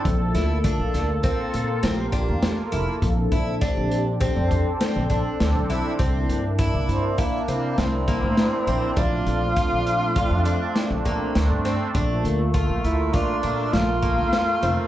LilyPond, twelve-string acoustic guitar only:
\new Staff \with { instrumentName = "Twelve-string acoustic guitar" } { \time 5/4 \key c \mixolydian \tempo 4 = 101 r8 e'8 d'4 c'4 c'8 d'4 e'8 | r8 e'8 d'4 c'4 c'8 d'4 e'8 | c'4 e'4 e'8 c'4 bes4 c'8 | d'4 f'4 f'8 d'4 bes4 c'8 |
d'4 f'4 f'8 d'4 bes4 c'8 | }